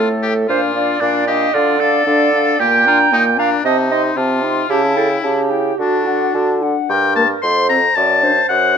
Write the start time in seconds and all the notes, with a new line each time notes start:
Already playing: A2 A3 A4
0.22 G4
0.48 A#2 D4 F4 C5 F5
0.75 D4 D5 F5
1.00 A#2 D4 F5
1.27 D4 G4 D#5 F5
1.53 D3 D4 F4 D5 F5
1.80 D4 A4 F5
2.06 D3 D4 D5 F5
2.33 D4 F5
2.60 A#2 A#3 G4 G5
2.86 D4 F4 A#5
3.12 A#2 A#3 D#4 G5
3.38 D4 F5 A#5
3.64 C3 C4 D#4 D#5 A5
3.91 D#4 D#5 C6
4.16 C3 C4 F4 A5
4.44 D#4 C6
4.69 C#3 C#4 E4 G4 A5
4.96 E4 A4 G5
5.24 C#3 C#4 G4 A5
5.50 E4 G5
5.79 D3 D4 F#4 A5
6.06 D4 F#5
6.34 D3 F#4 A5
6.62 D4 F#5
6.89 G2 A#4 G5
7.16 A#3 A#4 A5
7.42 F2 C5 C6
7.69 C4 A4 A#5
7.96 F#2 D5 A5
8.23 D4 C5
8.49 F#2 F#5